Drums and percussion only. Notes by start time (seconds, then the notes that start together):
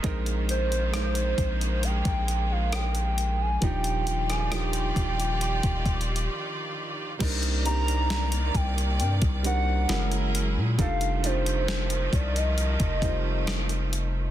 0.04 kick, closed hi-hat
0.26 closed hi-hat
0.49 closed hi-hat
0.72 closed hi-hat
0.94 cross-stick, closed hi-hat
1.15 closed hi-hat
1.38 kick, closed hi-hat
1.61 closed hi-hat
1.83 closed hi-hat
2.05 kick, closed hi-hat
2.28 closed hi-hat
2.72 cross-stick, closed hi-hat
2.95 closed hi-hat
3.18 closed hi-hat
3.62 kick, closed hi-hat
3.84 closed hi-hat
4.07 closed hi-hat
4.30 cross-stick, closed hi-hat
4.52 cross-stick, closed hi-hat
4.73 closed hi-hat
4.96 kick, closed hi-hat
5.20 closed hi-hat
5.41 closed hi-hat
5.63 kick, closed hi-hat
5.86 kick, closed hi-hat
6.01 closed hi-hat
6.16 closed hi-hat
7.20 kick, closed hi-hat, crash
7.43 closed hi-hat
7.66 closed hi-hat
7.88 closed hi-hat
8.10 snare, closed hi-hat
8.32 closed hi-hat
8.55 kick, closed hi-hat
8.78 closed hi-hat
9.00 closed hi-hat
9.22 kick, closed hi-hat
9.44 closed hi-hat
9.89 cross-stick, snare, closed hi-hat
10.12 closed hi-hat
10.35 closed hi-hat
10.79 kick, closed hi-hat
11.01 closed hi-hat
11.24 closed hi-hat
11.46 closed hi-hat
11.68 snare, closed hi-hat
11.90 closed hi-hat
12.13 kick, closed hi-hat
12.36 closed hi-hat
12.58 closed hi-hat
12.80 kick, closed hi-hat
13.02 kick, closed hi-hat
13.47 cross-stick, snare, closed hi-hat
13.69 closed hi-hat
13.93 closed hi-hat